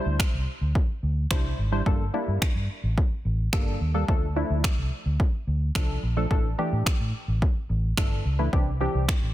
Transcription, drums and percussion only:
0.20 finger snap, kick
0.75 kick
1.31 finger snap, kick
1.86 kick
2.42 finger snap, kick
2.98 kick
3.53 finger snap, kick
4.08 kick
4.64 finger snap, kick
5.20 kick
5.75 finger snap, kick
6.31 kick
6.86 finger snap, kick
7.42 kick
7.97 finger snap, kick
8.53 kick
9.09 finger snap, kick

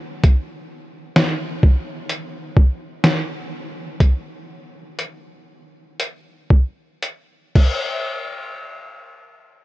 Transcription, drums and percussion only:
0.24 kick, closed hi-hat
1.16 snare, closed hi-hat
1.63 kick
2.09 closed hi-hat
2.57 kick
3.04 snare, closed hi-hat
4.00 kick, closed hi-hat
4.99 closed hi-hat
6.00 closed hi-hat
6.50 kick
7.03 closed hi-hat
7.55 kick, crash

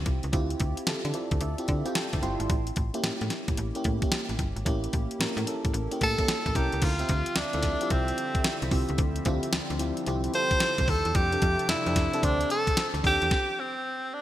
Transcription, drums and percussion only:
0.06 kick, closed hi-hat
0.23 closed hi-hat
0.33 kick, closed hi-hat
0.50 closed hi-hat
0.60 kick, closed hi-hat
0.77 closed hi-hat
0.87 snare, closed hi-hat
1.05 closed hi-hat
1.14 closed hi-hat
1.31 kick, closed hi-hat
1.41 closed hi-hat
1.58 closed hi-hat
1.68 kick, closed hi-hat
1.86 closed hi-hat
1.95 snare, closed hi-hat
2.13 kick, closed hi-hat
2.23 closed hi-hat
2.40 closed hi-hat
2.50 kick, closed hi-hat
2.67 closed hi-hat
2.76 kick, closed hi-hat
2.94 closed hi-hat
3.04 snare, closed hi-hat
3.21 closed hi-hat
3.30 snare, closed hi-hat
3.48 kick, closed hi-hat
3.57 closed hi-hat
3.75 closed hi-hat
3.84 kick, closed hi-hat
4.02 kick, closed hi-hat
4.12 snare, closed hi-hat
4.29 closed hi-hat
4.39 kick, closed hi-hat
4.57 closed hi-hat
4.66 kick, closed hi-hat
4.84 closed hi-hat
4.93 kick, closed hi-hat
5.11 closed hi-hat
5.21 snare, closed hi-hat
5.38 closed hi-hat
5.47 closed hi-hat
5.65 kick, closed hi-hat
5.74 closed hi-hat
5.92 closed hi-hat
6.01 kick, closed hi-hat
6.18 kick, closed hi-hat
6.28 snare, closed hi-hat
6.46 kick, closed hi-hat
6.55 kick, closed hi-hat
6.72 closed hi-hat
6.82 kick, closed hi-hat, crash
6.99 closed hi-hat
7.09 kick, closed hi-hat
7.26 closed hi-hat
7.36 snare, closed hi-hat
7.53 closed hi-hat
7.63 kick, snare, closed hi-hat
7.81 closed hi-hat
7.90 kick, closed hi-hat
8.08 closed hi-hat
8.18 closed hi-hat
8.35 kick, closed hi-hat
8.44 snare, closed hi-hat
8.62 closed hi-hat
8.71 kick, open hi-hat
8.89 closed hi-hat
8.98 kick, closed hi-hat
9.16 closed hi-hat
9.25 kick, closed hi-hat
9.43 closed hi-hat
9.53 snare, closed hi-hat
9.70 closed hi-hat
9.79 closed hi-hat
9.97 closed hi-hat
10.06 closed hi-hat
10.24 closed hi-hat
10.34 closed hi-hat
10.51 kick, closed hi-hat
10.60 snare, closed hi-hat
10.78 kick, closed hi-hat
10.88 kick, open hi-hat
11.05 closed hi-hat
11.15 kick, closed hi-hat
11.32 closed hi-hat
11.42 kick, closed hi-hat
11.59 closed hi-hat
11.69 snare, closed hi-hat
11.86 closed hi-hat
11.96 kick, snare, closed hi-hat
12.13 closed hi-hat
12.23 kick, closed hi-hat
12.41 closed hi-hat
12.50 closed hi-hat
12.67 kick, closed hi-hat
12.77 snare, closed hi-hat
12.94 closed hi-hat
13.04 kick, open hi-hat
13.22 closed hi-hat
13.31 kick, snare

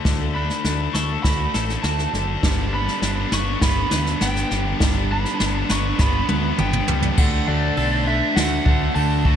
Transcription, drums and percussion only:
0.05 kick, snare
0.50 snare
0.65 snare
0.95 snare
1.24 kick, snare
1.54 snare
1.69 snare
1.84 snare
1.99 snare
2.14 snare
2.43 kick, snare
2.88 snare
3.02 snare
3.32 snare
3.61 kick, snare
3.91 snare
4.06 snare
4.21 snare
4.36 snare
4.51 snare
4.80 kick, snare
5.25 snare
5.40 snare
5.69 snare
5.99 kick, snare
6.29 high tom
6.58 mid tom
6.73 mid tom
6.88 floor tom
7.03 floor tom
7.17 kick, crash
7.77 open hi-hat
8.37 snare, open hi-hat
8.66 kick
8.95 open hi-hat
9.25 kick

